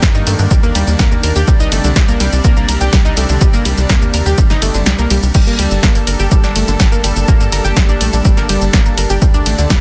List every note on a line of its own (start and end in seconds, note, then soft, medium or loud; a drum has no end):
0.00 0.11 G2 loud
0.00 1.44 D#3 medium
0.00 0.08 G3 medium
0.00 1.44 A#3 medium
0.00 5.31 D4 medium
0.00 kick loud
0.00 snare loud
0.00 shaker medium
0.15 0.23 G2 medium
0.15 0.18 D#4 loud
0.15 0.18 D#5 medium
0.15 shaker soft
0.27 0.35 G2 medium
0.27 0.33 A3 medium
0.27 0.32 A4 medium
0.27 open hi-hat loud
0.27 ride medium
0.27 shaker medium
0.39 0.47 G2 medium
0.39 0.47 D3 medium
0.39 0.47 D4 medium
0.39 shaker soft
0.51 0.59 D#2 loud
0.51 0.57 G3 medium
0.51 0.57 G4 medium
0.51 kick loud
0.51 shaker medium
0.63 0.71 D#2 medium
0.63 0.69 A#3 loud
0.63 0.69 A#4 medium
0.63 shaker soft
0.75 0.83 D#2 loud
0.75 0.81 G3 loud
0.75 0.81 G4 medium
0.75 open hi-hat loud
0.75 ride medium
0.75 shaker medium
0.87 0.96 D#2 medium
0.87 shaker soft
0.99 1.08 D#2 loud
0.99 1.08 A#3 loud
0.99 1.08 A#4 medium
0.99 kick loud
0.99 snare loud
0.99 shaker medium
1.12 1.20 D#2 medium
1.12 1.17 A#3 medium
1.12 1.17 A#4 medium
1.12 shaker soft
1.23 1.32 D#2 loud
1.23 1.29 A#4 medium
1.23 1.29 A#5 medium
1.23 open hi-hat loud
1.23 ride medium
1.23 shaker medium
1.36 1.44 D#2 medium
1.36 1.41 G4 loud
1.36 1.41 G5 medium
1.36 shaker soft
1.48 1.56 C2 loud
1.48 5.31 C3 medium
1.48 1.53 G3 medium
1.48 5.31 G3 medium
1.48 1.53 G4 medium
1.48 kick loud
1.48 shaker medium
1.60 1.68 C2 medium
1.60 1.63 D#4 loud
1.60 1.63 D#5 medium
1.60 shaker soft
1.72 1.80 G1 medium
1.72 1.78 A3 medium
1.72 1.78 A4 medium
1.72 open hi-hat loud
1.72 ride medium
1.72 shaker medium
1.84 1.92 C2 medium
1.84 1.93 D3 medium
1.84 1.93 D4 medium
1.84 shaker soft
1.96 2.04 C2 loud
1.96 2.02 G3 medium
1.96 2.02 G4 medium
1.96 kick loud
1.96 snare loud
1.96 shaker medium
2.08 2.16 C2 medium
2.08 2.14 A#3 loud
2.08 2.14 A#4 medium
2.08 shaker soft
2.20 2.29 C2 medium
2.20 2.26 G3 loud
2.20 2.26 G4 medium
2.20 open hi-hat loud
2.20 ride medium
2.20 shaker medium
2.32 2.41 C2 medium
2.32 shaker soft
2.44 2.53 C2 loud
2.44 2.53 A#3 loud
2.44 2.53 A#4 medium
2.44 kick loud
2.44 shaker medium
2.57 2.65 C2 medium
2.57 2.62 A#3 medium
2.57 2.62 A#4 medium
2.57 shaker soft
2.69 2.77 C2 loud
2.69 2.74 A#4 medium
2.69 2.74 A#5 medium
2.69 open hi-hat loud
2.69 ride medium
2.69 shaker medium
2.81 2.89 C2 medium
2.81 2.86 G4 loud
2.81 2.86 G5 medium
2.81 shaker soft
2.93 3.01 C2 loud
2.93 2.99 G3 medium
2.93 2.99 G4 medium
2.93 kick loud
2.93 snare loud
2.93 shaker medium
3.05 3.13 C2 medium
3.05 3.08 D#4 loud
3.05 3.08 D#5 medium
3.05 shaker soft
3.17 3.25 C2 loud
3.17 3.23 A3 medium
3.17 3.23 A4 medium
3.17 open hi-hat loud
3.17 ride medium
3.17 shaker medium
3.29 3.37 C2 medium
3.29 3.38 D3 medium
3.29 3.38 D4 medium
3.29 shaker soft
3.41 3.50 C2 loud
3.41 3.47 G3 medium
3.41 3.47 G4 medium
3.41 kick loud
3.41 shaker medium
3.53 3.62 G1 medium
3.53 3.59 A#3 loud
3.53 3.59 A#4 medium
3.53 shaker soft
3.65 3.74 C2 loud
3.65 3.71 G3 loud
3.65 3.71 G4 medium
3.65 open hi-hat loud
3.65 ride medium
3.65 shaker medium
3.78 3.86 C2 medium
3.78 shaker soft
3.90 3.98 D#2 loud
3.90 3.98 A#3 loud
3.90 3.98 A#4 medium
3.90 kick loud
3.90 snare loud
3.90 shaker medium
4.02 4.10 D#2 medium
4.02 4.07 A#3 medium
4.02 4.07 A#4 medium
4.02 shaker soft
4.14 4.22 D#2 medium
4.14 4.20 A#4 medium
4.14 4.20 A#5 medium
4.14 open hi-hat loud
4.14 ride medium
4.14 shaker medium
4.26 4.34 D#2 medium
4.26 4.32 G4 loud
4.26 4.32 G5 medium
4.26 shaker soft
4.38 4.46 G1 loud
4.38 4.44 G3 medium
4.38 4.44 G4 medium
4.38 kick loud
4.38 shaker medium
4.50 4.58 G1 medium
4.50 4.54 D#4 loud
4.50 4.54 D#5 medium
4.50 snare soft
4.50 shaker soft
4.62 4.70 G1 loud
4.62 4.68 A3 medium
4.62 4.68 A4 medium
4.62 open hi-hat loud
4.62 ride medium
4.62 shaker medium
4.74 4.83 G1 medium
4.74 4.83 D3 medium
4.74 4.83 D4 medium
4.74 shaker soft
4.86 4.95 C2 loud
4.86 4.92 G3 medium
4.86 4.92 G4 medium
4.86 snare loud
4.86 shaker medium
4.98 5.07 C2 medium
4.98 5.04 A#3 loud
4.98 5.04 A#4 medium
4.98 shaker soft
5.10 5.19 C2 loud
5.10 5.16 G3 loud
5.10 5.16 G4 medium
5.10 open hi-hat loud
5.10 ride medium
5.10 shaker medium
5.23 5.31 C2 medium
5.23 shaker soft
5.35 5.43 G1 loud
5.35 5.41 G3 medium
5.35 9.18 G3 medium
5.35 9.81 D4 medium
5.35 5.41 G4 medium
5.35 9.81 G4 medium
5.35 9.18 A4 medium
5.35 kick loud
5.35 crash loud
5.35 shaker medium
5.45 5.55 G1 medium
5.45 9.22 A#3 medium
5.45 5.53 A#3 loud
5.45 5.53 A#4 medium
5.45 shaker soft
5.59 5.67 D2 loud
5.59 5.65 G3 loud
5.59 5.65 G4 medium
5.59 open hi-hat loud
5.59 ride medium
5.59 shaker medium
5.69 5.79 G1 medium
5.69 9.81 A5 medium
5.69 shaker soft
5.83 5.91 G1 loud
5.83 5.92 A#3 loud
5.83 5.92 A#4 medium
5.83 kick loud
5.83 snare loud
5.83 shaker medium
5.95 6.03 G1 medium
5.95 6.01 A#3 medium
5.95 6.01 A#4 medium
5.95 open hi-hat medium
5.95 shaker soft
6.07 6.16 G1 medium
6.07 6.13 A#4 medium
6.07 6.13 A#5 medium
6.07 open hi-hat loud
6.07 ride medium
6.07 shaker medium
6.19 6.28 G1 medium
6.19 6.25 G4 loud
6.19 6.25 G5 medium
6.19 shaker soft
6.31 6.40 G1 loud
6.31 6.37 G3 medium
6.31 6.37 G4 medium
6.31 kick loud
6.31 shaker medium
6.44 6.52 G1 medium
6.44 6.47 D4 loud
6.44 6.47 D5 medium
6.44 snare soft
6.44 shaker soft
6.56 6.64 G1 medium
6.56 6.61 A3 medium
6.56 6.61 A4 medium
6.56 open hi-hat loud
6.56 ride medium
6.56 shaker medium
6.68 6.76 G1 medium
6.68 6.76 D3 medium
6.68 6.76 D4 medium
6.68 shaker soft
6.80 6.88 G1 loud
6.80 6.86 G3 medium
6.80 6.86 G4 medium
6.80 kick loud
6.80 snare loud
6.80 shaker medium
6.92 7.00 G1 medium
6.92 6.98 A#3 loud
6.92 6.98 A#4 medium
6.92 shaker soft
7.04 7.12 G1 loud
7.04 7.10 G3 loud
7.04 7.10 G4 medium
7.04 open hi-hat loud
7.04 ride medium
7.04 shaker medium
7.16 7.24 G1 medium
7.16 shaker soft
7.28 7.37 G1 loud
7.28 7.37 A#3 loud
7.28 7.37 A#4 medium
7.28 kick loud
7.28 shaker medium
7.40 7.49 G2 medium
7.40 7.46 A#3 medium
7.40 7.46 A#4 medium
7.40 shaker soft
7.52 7.61 G1 loud
7.52 7.58 A#4 medium
7.52 7.58 A#5 medium
7.52 open hi-hat loud
7.52 ride medium
7.52 shaker medium
7.65 7.73 G1 medium
7.65 7.70 G4 loud
7.65 7.70 G5 medium
7.65 shaker soft
7.77 7.85 A#1 loud
7.77 7.82 G3 medium
7.77 7.82 G4 medium
7.77 kick loud
7.77 snare loud
7.77 shaker medium
7.89 7.97 A#1 medium
7.89 7.92 D4 loud
7.89 7.92 D5 medium
7.89 shaker soft
8.01 8.09 A#1 loud
8.01 8.07 A3 medium
8.01 8.07 A4 medium
8.01 open hi-hat loud
8.01 ride medium
8.01 shaker medium
8.13 8.21 A#1 medium
8.13 8.22 D3 medium
8.13 8.22 D4 medium
8.13 shaker soft
8.25 8.33 G1 loud
8.25 8.31 G3 medium
8.25 8.31 G4 medium
8.25 kick loud
8.25 shaker medium
8.37 8.46 G1 medium
8.37 8.43 A#3 loud
8.37 8.43 A#4 medium
8.37 snare soft
8.37 shaker soft
8.49 8.58 G1 loud
8.49 8.55 G3 loud
8.49 8.55 G4 medium
8.49 open hi-hat loud
8.49 ride medium
8.49 shaker medium
8.61 8.70 G1 medium
8.61 shaker soft
8.73 8.82 G1 loud
8.73 8.82 A#3 loud
8.73 8.82 A#4 medium
8.73 kick loud
8.73 snare loud
8.73 shaker medium
8.86 8.94 G1 medium
8.86 8.91 A#3 medium
8.86 8.91 A#4 medium
8.86 shaker soft
8.98 9.06 G1 loud
8.98 9.03 A#4 medium
8.98 9.03 A#5 medium
8.98 open hi-hat loud
8.98 ride medium
8.98 shaker medium
9.10 9.18 G1 medium
9.10 9.16 G4 loud
9.10 9.16 G5 medium
9.10 shaker soft
9.22 9.30 D2 loud
9.22 9.81 D3 medium
9.22 9.28 G3 medium
9.22 9.81 A3 medium
9.22 9.28 G4 medium
9.22 kick loud
9.22 shaker medium
9.34 9.42 D2 medium
9.34 9.37 D4 loud
9.34 9.37 D5 medium
9.34 9.81 D5 medium
9.34 9.81 C6 medium
9.34 shaker soft
9.46 9.54 A1 loud
9.46 9.52 A3 medium
9.46 9.52 A4 medium
9.46 open hi-hat loud
9.46 ride medium
9.46 shaker medium
9.58 9.66 D2 medium
9.58 9.67 D3 medium
9.58 9.67 D4 medium
9.58 shaker soft
9.70 9.79 D2 loud
9.70 9.76 G3 medium
9.70 9.76 G4 medium
9.70 kick loud
9.70 snare loud
9.70 shaker medium